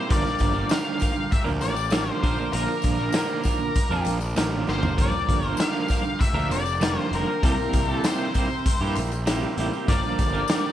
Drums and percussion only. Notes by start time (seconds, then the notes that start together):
0.10 kick, closed hi-hat
0.25 snare, tambourine
0.39 kick, closed hi-hat, tambourine
0.53 tambourine
0.69 snare, closed hi-hat, tambourine
0.85 tambourine
1.00 kick, closed hi-hat, tambourine
1.15 tambourine
1.31 kick, closed hi-hat, tambourine
1.47 tambourine
1.61 closed hi-hat, tambourine
1.76 tambourine
1.90 snare, closed hi-hat, tambourine
2.06 tambourine
2.23 kick, closed hi-hat
2.37 tambourine
2.52 closed hi-hat, tambourine
2.68 tambourine
2.82 kick, closed hi-hat, tambourine
2.97 tambourine
3.12 snare, closed hi-hat, tambourine
3.29 tambourine
3.43 kick, closed hi-hat, tambourine
3.59 tambourine
3.75 kick, closed hi-hat, tambourine
3.90 tambourine
4.05 closed hi-hat, tambourine
4.21 tambourine
4.36 snare, closed hi-hat, tambourine
4.51 tambourine
4.67 snare, tambourine
4.82 floor tom, tambourine
4.98 kick, closed hi-hat
5.12 tambourine
5.29 kick, closed hi-hat
5.42 tambourine
5.57 snare, closed hi-hat, tambourine
5.73 tambourine
5.88 kick, closed hi-hat, tambourine
6.04 tambourine
6.19 kick, closed hi-hat, tambourine
6.35 tambourine
6.51 closed hi-hat, tambourine
6.66 tambourine
6.81 snare, closed hi-hat, tambourine
7.13 closed hi-hat
7.43 kick, closed hi-hat
7.58 tambourine
7.73 kick, closed hi-hat, tambourine
7.89 tambourine
8.04 snare, closed hi-hat, tambourine
8.20 tambourine
8.34 kick, closed hi-hat, tambourine
8.50 tambourine
8.66 kick, closed hi-hat, tambourine
8.81 tambourine
8.95 closed hi-hat, tambourine
9.12 tambourine
9.27 snare, closed hi-hat, tambourine
9.43 tambourine
9.57 closed hi-hat
9.73 tambourine
9.88 kick, closed hi-hat
10.03 tambourine
10.19 kick, closed hi-hat, tambourine
10.35 tambourine
10.48 snare, closed hi-hat, tambourine
10.64 tambourine